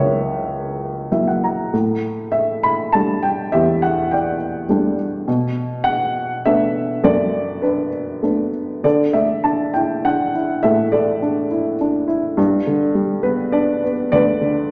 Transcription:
0.00 1.69 C#2 medium
0.00 1.75 F#2 medium
0.00 1.08 F#3 soft
0.00 1.08 A#3 soft
0.00 1.08 E4 soft
0.00 1.75 A#4 medium
0.00 1.08 C#5 medium
0.00 1.12 E5 medium
0.00 1.28 F#5 medium
1.12 1.71 F#3 soft
1.12 1.71 A#3 soft
1.12 1.72 E4 soft
1.12 1.26 E5 soft
1.28 1.42 F#5 soft
1.44 1.72 A#5 soft
1.73 3.48 A2 soft
2.32 2.64 E5 medium
2.63 2.94 B5 medium
2.92 4.66 G3 soft
2.92 4.66 A3 soft
2.92 4.66 D4 soft
2.92 3.23 A5 medium
3.23 3.53 G5 medium
3.52 5.24 E2 medium
3.52 4.36 G4 medium
3.52 3.82 E5 medium
3.82 4.12 F#5 medium
4.11 4.95 D5 soft
4.11 4.94 G5 medium
4.69 5.25 G3 soft
4.69 5.26 A3 soft
4.69 5.26 D4 soft
5.28 6.99 B2 medium
5.84 6.40 F#5 medium
6.46 8.20 A3 soft
6.46 8.20 B3 soft
6.46 7.62 D4 soft
6.46 7.05 E5 medium
7.04 8.82 F#2 medium
7.04 7.89 A4 medium
7.04 7.59 D5 medium
7.62 8.22 D4 soft
7.62 8.50 B4 medium
8.22 8.83 A3 soft
8.22 8.83 B3 soft
8.22 8.83 D4 soft
8.84 10.59 D3 soft
8.84 9.72 A4 soft
8.84 9.16 D5 medium
9.13 10.30 A3 soft
9.13 9.42 E5 medium
9.44 10.04 D4 soft
9.44 9.72 A5 medium
9.74 10.34 E4 soft
9.74 10.05 G5 medium
10.05 11.18 D4 soft
10.05 10.65 F#5 medium
10.35 11.47 E4 soft
10.63 12.33 A2 medium
10.63 10.92 A4 medium
10.63 10.93 E5 medium
10.92 12.05 A3 soft
10.92 11.76 A4 soft
10.92 11.75 D5 medium
11.22 11.79 D4 soft
11.51 12.06 E4 soft
11.81 12.36 D4 soft
12.08 12.36 E4 soft
12.37 14.09 G2 medium
12.67 13.80 D3 soft
12.95 14.09 G3 soft
13.23 13.82 B3 medium
13.23 13.54 B4 medium
13.52 14.68 D4 medium
13.52 14.08 D5 medium
13.84 14.71 B3 soft
14.12 14.71 D2 medium
14.12 14.71 B4 medium
14.12 14.71 D5 medium
14.41 14.71 D3 soft

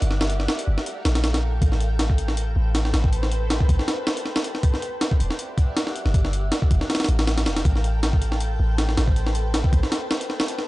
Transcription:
0.02 0.47 G1 loud
0.02 closed hi-hat medium
0.10 1.60 A4 medium
0.10 1.60 A#4 medium
0.10 1.60 F5 medium
0.10 4.59 G5 medium
0.10 snare medium
0.21 snare loud
0.30 closed hi-hat medium
0.40 snare soft
0.49 snare loud
0.59 closed hi-hat medium
0.68 0.77 G1 loud
0.78 snare medium
0.86 closed hi-hat medium
1.05 1.60 A#1 medium
1.05 snare loud
1.05 closed hi-hat medium
1.15 snare loud
1.15 closed hi-hat medium
1.24 snare loud
1.24 closed hi-hat medium
1.34 snare loud
1.34 closed hi-hat medium
1.62 2.55 A1 loud
1.62 4.61 A4 medium
1.62 4.61 B4 medium
1.62 4.61 C5 medium
1.62 kick loud
1.62 closed hi-hat medium
1.72 snare soft
1.81 closed hi-hat medium
1.99 snare loud
1.99 closed hi-hat medium
2.10 kick medium
2.18 closed hi-hat medium
2.28 snare medium
2.37 closed hi-hat loud
2.56 2.92 A1 medium
2.75 snare loud
2.75 closed hi-hat medium
2.85 snare medium
2.94 3.59 A1 medium
2.94 snare loud
2.94 closed hi-hat medium
3.04 kick medium
3.13 closed hi-hat medium
3.23 snare medium
3.32 closed hi-hat medium
3.50 snare loud
3.50 closed hi-hat medium
3.61 kick medium
3.69 3.78 A1 loud
3.69 kick loud
3.69 closed hi-hat medium
3.79 snare medium
3.88 snare loud
3.88 closed hi-hat medium
4.07 snare loud
4.17 closed hi-hat medium
4.26 snare soft
4.36 snare loud
4.44 closed hi-hat medium
4.55 snare soft
4.63 6.13 G4 medium
4.63 6.13 D5 medium
4.63 6.13 E5 medium
4.63 6.13 F#5 medium
4.63 kick loud
4.63 closed hi-hat medium
4.74 snare soft
4.82 closed hi-hat medium
5.01 snare loud
5.01 closed hi-hat medium
5.11 kick loud
5.20 5.29 E1 loud
5.20 closed hi-hat medium
5.30 snare medium
5.39 closed hi-hat medium
5.58 kick loud
5.58 closed hi-hat medium
5.77 snare loud
5.77 closed hi-hat medium
5.87 snare medium
5.96 closed hi-hat medium
6.05 6.51 G1 loud
6.05 snare soft
6.14 10.63 A4 medium
6.14 7.64 A#4 medium
6.14 7.64 F5 medium
6.14 10.63 G5 medium
6.14 kick loud
6.14 closed hi-hat medium
6.25 snare medium
6.33 closed hi-hat medium
6.52 snare loud
6.52 closed hi-hat medium
6.62 kick medium
6.71 6.80 G1 loud
6.71 kick loud
6.71 closed hi-hat medium
6.81 snare medium
6.90 snare medium
6.90 closed hi-hat medium
6.95 snare medium
6.95 closed hi-hat medium
7.00 snare loud
7.00 closed hi-hat medium
7.04 snare medium
7.04 closed hi-hat medium
7.08 7.48 A1 loud
7.08 closed hi-hat medium
7.19 snare loud
7.27 snare loud
7.27 closed hi-hat medium
7.38 snare loud
7.38 closed hi-hat medium
7.46 7.63 F1 medium
7.46 snare loud
7.46 closed hi-hat medium
7.57 snare loud
7.57 closed hi-hat medium
7.65 8.58 A1 loud
7.65 10.64 B4 medium
7.65 10.64 C5 medium
7.65 kick loud
7.65 closed hi-hat medium
7.76 snare soft
7.84 closed hi-hat medium
8.03 snare loud
8.03 closed hi-hat loud
8.13 kick medium
8.22 closed hi-hat medium
8.32 snare medium
8.40 closed hi-hat medium
8.60 8.96 A1 medium
8.78 snare loud
8.78 closed hi-hat medium
8.89 snare medium
8.97 9.63 A1 medium
8.97 snare loud
8.97 closed hi-hat medium
9.08 kick medium
9.16 closed hi-hat medium
9.27 snare medium
9.35 closed hi-hat medium
9.54 snare loud
9.54 closed hi-hat medium
9.64 kick loud
9.73 9.82 A1 loud
9.73 kick loud
9.73 closed hi-hat medium
9.83 snare medium
9.92 snare loud
9.92 closed hi-hat medium
10.11 snare loud
10.21 closed hi-hat medium
10.30 snare soft
10.40 snare loud
10.48 closed hi-hat medium
10.59 snare soft

